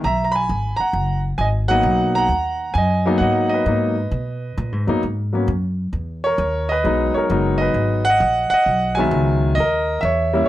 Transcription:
0.04 0.47 B1 medium
0.04 0.24 E5 medium
0.04 0.23 A#5 medium
0.24 0.34 A#5 medium
0.32 0.77 G#5 medium
0.32 0.75 B5 medium
0.49 0.77 G#1 medium
0.76 1.22 F#5 medium
0.76 1.20 A#5 medium
0.76 muted upright bass stroke soft
0.93 1.38 F#1 medium
1.38 1.83 G#1 medium
1.38 1.48 D#5 medium
1.38 1.45 G#5 medium
1.68 2.26 F#3 medium
1.68 2.27 A#3 medium
1.68 2.27 B3 medium
1.68 2.27 D#4 medium
1.68 2.13 D#5 medium
1.68 2.16 F#5 loud
1.83 2.28 B1 medium
2.15 2.73 F#5 medium
2.15 2.71 A#5 loud
2.29 2.73 D#2 medium
2.74 3.19 F#2 medium
2.74 3.21 G#5 medium
2.78 3.19 D#5 medium
3.06 3.63 F#3 medium
3.06 3.63 A#3 medium
3.06 3.64 B3 medium
3.06 3.64 D#4 medium
3.18 3.65 G#2 medium
3.18 3.48 F#5 medium
3.23 3.48 D#5 medium
3.49 4.83 D#5 medium
3.54 4.85 B4 medium
3.66 4.10 G#2 medium
3.66 3.94 F#3 medium
3.66 3.94 A#3 medium
3.66 3.94 B3 soft
3.66 3.95 D#4 medium
4.11 4.56 B2 medium
4.58 4.72 A#2 medium
4.72 4.87 G#2 medium
4.87 5.02 F#2 medium
4.87 5.01 F#3 medium
4.87 5.01 A#3 medium
4.87 5.01 B3 medium
4.87 5.02 D#4 medium
5.03 5.47 G#2 medium
5.33 5.46 F#3 medium
5.33 5.47 A#3 medium
5.33 5.47 B3 soft
5.33 5.47 C#4 medium
5.48 5.92 F#2 medium
5.93 6.37 E2 medium
6.24 6.68 A#4 medium
6.24 6.71 C#5 medium
6.38 6.83 D#2 medium
6.69 7.13 B4 medium
6.69 7.12 D#5 medium
6.84 7.13 B1 medium
6.84 7.28 F#3 medium
6.84 7.28 G#3 medium
6.84 7.28 B3 medium
6.84 7.29 D#4 medium
7.14 7.59 A#4 medium
7.14 7.57 C#5 medium
7.14 muted upright bass stroke soft
7.29 7.74 F#1 medium
7.29 8.00 F#3 medium
7.29 8.00 G#3 medium
7.29 8.00 B3 medium
7.29 8.01 D#4 medium
7.58 8.03 B4 medium
7.58 8.06 D#5 medium
7.74 8.19 G#1 medium
8.05 8.48 F#5 loud
8.10 8.50 D#5 medium
8.20 8.49 A#1 medium
8.50 8.95 D#5 medium
8.50 8.98 F#5 loud
8.50 muted upright bass stroke soft
8.66 9.10 B1 medium
8.95 9.54 F#3 medium
8.95 9.55 G#3 medium
8.95 9.55 B3 medium
8.95 9.58 G#5 medium
8.99 9.55 D#3 medium
8.99 9.55 E5 medium
9.11 9.56 C#2 medium
9.55 10.02 D#2 medium
9.55 9.99 D#5 medium
9.60 10.01 A#4 medium
10.01 10.47 E2 medium
10.01 10.44 C#5 medium
10.01 10.49 E5 medium
10.33 10.49 G3 medium
10.33 10.49 A#3 medium
10.33 10.49 C#4 medium
10.33 10.49 E4 medium
10.46 10.49 C#5 medium

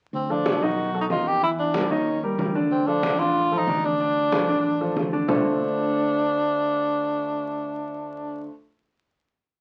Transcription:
0.13 0.58 D2 medium
0.13 0.33 C4 medium
0.13 high conga soft
0.30 0.56 F3 medium
0.30 0.65 D4 medium
0.30 0.56 F4 medium
0.30 0.56 A4 medium
0.30 high conga soft
0.46 high conga medium
0.61 1.06 B1 medium
0.61 0.88 D#3 medium
0.61 0.88 D#4 medium
0.61 1.00 F#4 medium
0.61 0.89 D#5 medium
0.61 high conga soft
0.78 high conga soft
0.94 1.07 F#3 medium
0.94 1.07 F#4 medium
0.94 1.07 A4 medium
0.94 high conga soft
1.01 1.05 D#4 medium
1.09 1.85 E2 medium
1.09 1.36 D#3 medium
1.09 1.37 D#4 medium
1.09 1.29 F4 medium
1.09 1.37 D#5 medium
1.09 high conga medium
1.26 1.43 G4 loud
1.26 high conga soft
1.42 1.69 E3 medium
1.42 1.69 E4 medium
1.42 1.50 E4 medium
1.42 1.69 E5 medium
1.42 high conga soft
1.58 1.92 D4 medium
1.58 high conga soft
1.74 1.88 G3 medium
1.74 1.88 G4 medium
1.74 1.88 A#4 medium
1.74 high conga medium
1.90 2.35 D#2 medium
1.90 2.17 D#3 medium
1.90 2.23 C#4 medium
1.90 2.17 D#4 medium
1.90 2.17 D#5 medium
1.90 high conga soft
2.07 high conga soft
2.23 2.36 G3 medium
2.23 2.36 G4 medium
2.23 2.36 A#4 medium
2.23 high conga soft
2.38 3.13 D2 medium
2.38 2.52 G3 medium
2.38 2.52 G4 medium
2.38 2.52 A#4 medium
2.38 high conga medium
2.55 2.81 D3 medium
2.55 2.81 D4 medium
2.55 2.82 D5 medium
2.71 2.88 C4 medium
2.71 high conga soft
2.87 3.14 F3 medium
2.87 3.21 D4 loud
2.87 3.14 F4 medium
2.87 3.14 A4 medium
2.87 high conga soft
3.03 high conga medium
3.19 3.64 A1 medium
3.19 3.46 D3 medium
3.19 3.46 D4 medium
3.19 3.59 F4 loud
3.19 3.46 D5 medium
3.19 high conga soft
3.35 high conga soft
3.51 3.65 F3 medium
3.51 3.65 F4 medium
3.51 3.65 A4 medium
3.51 high conga soft
3.58 3.87 D#4 loud
3.67 4.42 D2 medium
3.67 3.94 D3 medium
3.67 3.94 D4 medium
3.67 3.94 D5 medium
3.67 high conga medium
3.84 5.13 D4 medium
3.84 high conga soft
4.00 4.26 D3 medium
4.00 4.26 D4 medium
4.00 4.27 D5 medium
4.00 high conga soft
4.16 high conga soft
4.32 4.45 F3 medium
4.32 4.45 F4 medium
4.32 4.46 A4 medium
4.32 high conga medium
4.48 4.93 A1 medium
4.48 4.74 D3 medium
4.48 4.75 D4 medium
4.48 4.75 D5 medium
4.48 high conga soft
4.64 high conga soft
4.80 4.93 F3 medium
4.80 4.94 F4 medium
4.80 4.94 A4 medium
4.80 high conga soft
4.95 5.24 D2 medium
4.95 5.10 F3 medium
4.95 5.10 F4 medium
4.95 5.10 A4 medium
4.95 high conga medium
5.12 5.26 D3 medium
5.12 5.26 D4 medium
5.12 5.26 D5 medium
5.28 8.48 D2 medium
5.28 8.48 D3 medium
5.28 8.48 A3 medium
5.28 8.48 C4 medium
5.28 8.48 D4 medium
5.28 8.49 D4 medium
5.28 8.49 F4 medium
5.28 8.49 A4 medium
5.28 low conga medium

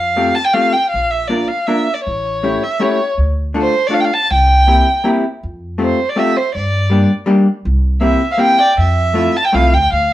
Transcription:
0.00 0.29 F2 medium
0.00 0.37 F5 medium
0.16 0.36 A3 soft
0.16 0.36 C4 soft
0.16 0.37 F4 soft
0.16 0.37 G4 medium
0.35 0.46 A5 medium
0.44 0.55 G5 medium
0.53 0.74 A3 medium
0.53 0.74 C4 soft
0.53 0.74 F4 soft
0.53 0.74 G4 soft
0.53 0.74 F5 medium
0.72 0.89 G5 medium
0.90 1.43 A#1 medium
0.90 1.12 F5 medium
1.10 1.29 E5 medium
1.28 1.49 A#3 soft
1.28 1.49 D4 soft
1.28 1.50 F4 soft
1.28 1.50 A#4 soft
1.28 1.50 D5 medium
1.48 1.68 F5 medium
1.67 1.87 A#3 medium
1.67 1.87 D4 medium
1.67 1.87 F4 soft
1.67 1.87 A#4 medium
1.67 1.95 E5 medium
1.94 2.04 D5 medium
2.04 2.55 A1 medium
2.04 2.65 C#5 medium
2.43 2.62 A3 soft
2.43 2.62 C#4 soft
2.43 2.62 E4 soft
2.43 2.63 G4 medium
2.63 2.84 E5 medium
2.80 2.99 A3 medium
2.80 2.99 C#4 soft
2.80 2.99 E4 soft
2.80 3.00 G4 medium
2.80 3.09 C#5 medium
3.18 3.66 D2 medium
3.54 3.74 A3 medium
3.54 3.74 D4 medium
3.54 3.74 F4 soft
3.54 3.74 A4 medium
3.61 3.88 C5 medium
3.87 4.10 A3 medium
3.87 4.10 D4 medium
3.87 3.95 D5 medium
3.91 4.10 F4 medium
3.91 4.10 A4 medium
3.91 4.02 F5 medium
4.00 4.15 F5 medium
4.00 4.06 G5 medium
4.14 4.31 A5 medium
4.31 4.79 C2 medium
4.31 5.03 G5 medium
4.67 4.86 A#3 medium
4.67 4.87 C4 soft
4.67 4.87 E4 soft
4.67 4.87 G4 soft
5.04 5.24 A#3 medium
5.04 5.24 C4 soft
5.04 5.24 E4 medium
5.04 5.24 G4 medium
5.43 5.92 F2 medium
5.78 5.98 A3 medium
5.78 5.98 C4 soft
5.78 5.99 F4 soft
5.78 5.98 G4 soft
5.83 6.11 C5 medium
6.09 6.20 D5 medium
6.16 6.36 A3 medium
6.16 6.36 C4 soft
6.16 6.36 F4 soft
6.16 6.36 G4 medium
6.16 6.38 E5 medium
6.37 6.54 C5 medium
6.55 7.03 G2 medium
6.55 7.07 D5 medium
6.90 7.10 G3 soft
6.90 7.10 A#3 soft
6.90 7.11 D4 soft
6.90 7.10 G4 soft
7.26 7.46 G3 medium
7.26 7.47 A#3 medium
7.26 7.47 D4 medium
7.26 7.47 G4 medium
7.65 8.14 C2 medium
8.01 8.21 A#3 medium
8.01 8.21 C4 medium
8.01 8.21 E4 soft
8.01 8.21 G4 soft
8.01 8.33 E5 medium
8.31 8.36 E5 medium
8.31 8.34 F5 medium
8.31 8.41 F5 medium
8.38 8.58 A#3 medium
8.38 8.58 C4 medium
8.38 8.58 E4 soft
8.38 8.58 G4 medium
8.38 8.61 G5 loud
8.60 8.78 D5 medium
8.78 9.27 F2 medium
8.78 9.38 E5 medium
9.14 9.34 A3 soft
9.14 9.34 C4 soft
9.14 9.34 E4 soft
9.14 9.35 F4 medium
9.37 9.46 A5 medium
9.45 9.56 G5 medium
9.52 9.71 C2 medium
9.52 9.72 A3 soft
9.52 9.72 C4 soft
9.52 9.73 E4 soft
9.52 9.73 F4 medium
9.52 9.75 F5 medium
9.73 9.90 D2 medium
9.73 9.92 G5 medium
9.92 10.13 D2 medium
9.92 10.13 F5 medium

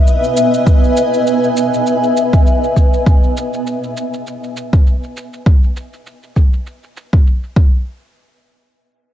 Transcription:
0.00 3.06 B3 medium
0.00 3.06 B4 medium
0.00 3.07 D#5 medium
0.00 3.06 E5 medium
0.00 3.07 G#5 medium
0.07 cabasa soft
0.24 cabasa soft
0.37 cabasa medium
0.54 cabasa soft
0.67 kick loud
0.67 cabasa soft
0.84 cabasa soft
0.97 cabasa medium
1.14 cabasa soft
1.27 cabasa soft
1.44 cabasa soft
1.57 cabasa medium
1.74 cabasa soft
1.87 cabasa soft
2.04 cabasa soft
2.17 cabasa medium
2.33 kick medium
2.33 cabasa soft
2.47 cabasa soft
2.64 cabasa soft
2.76 kick medium
2.76 cabasa medium
2.94 cabasa soft
3.06 kick loud
3.06 cabasa soft
3.24 cabasa soft
3.37 cabasa medium
3.54 cabasa soft
3.67 cabasa soft
3.84 cabasa soft
3.97 cabasa medium
4.14 cabasa soft
4.27 cabasa soft
4.44 cabasa soft
4.57 cabasa medium
4.73 kick medium
4.73 cabasa soft
4.87 cabasa soft
5.04 cabasa soft
5.17 cabasa medium
5.33 cabasa soft
5.46 kick loud
5.46 cabasa soft
5.63 cabasa soft
5.76 cabasa medium
5.93 cabasa soft
6.07 cabasa soft
6.23 cabasa soft
6.36 kick medium
6.36 cabasa medium
6.53 cabasa soft
6.67 cabasa soft
6.83 cabasa soft
6.97 cabasa medium
7.13 kick medium
7.13 cabasa soft
7.27 cabasa soft
7.43 cabasa soft
7.56 kick loud

